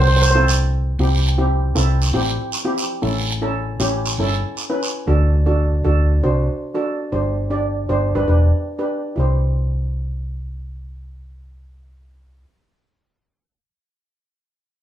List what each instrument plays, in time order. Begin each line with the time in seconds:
Already playing: fingered electric bass C2
0.08 steel pan C5
0.16 steel pan C5
0.22 steel pan C5, short guiro
0.31 steel pan C5
0.35 steel pan C4 E4 A4
0.48 short guiro
0.99 fingered electric bass C2, steel pan C4 E4 G4, long guiro
1.38 steel pan C4 E4 G4
1.75 fingered electric bass C2, steel pan C4 E4 A4, short guiro
2.02 short guiro, long guiro
2.14 fingered electric bass A1, steel pan C4 E4 G4
2.52 short guiro
2.65 steel pan C4 E4 G4
2.78 short guiro
3.02 fingered electric bass A1, steel pan C#4 E4 A4, long guiro
3.42 steel pan C#4 E4 A4
3.80 fingered electric bass A1, steel pan C#4 E4 G4, short guiro
4.06 short guiro, long guiro
4.18 fingered electric bass G1, steel pan C#4 E4 A4
4.57 short guiro
4.70 steel pan C#4 E4 B4
4.83 short guiro
5.07 fingered electric bass D2, steel pan D4 F#4 A4
5.46 steel pan D4 F#4 A4
5.84 fingered electric bass D2, steel pan D4 F#4 A4
6.23 fingered electric bass C2, steel pan D4 F#4 C5
6.75 steel pan D4 F#4 A4
7.12 fingered electric bass G1, steel pan D4 G4 C5
7.50 steel pan D4 G4 D5
7.89 fingered electric bass G1, steel pan D4 G4 C5
8.15 fingered electric bass G1, steel pan D4 G4 B4
8.28 fingered electric bass E1, steel pan D4 G4 B4
8.79 steel pan D4 G4 B4
9.16 fingered electric bass C2, steel pan E4 G4 C5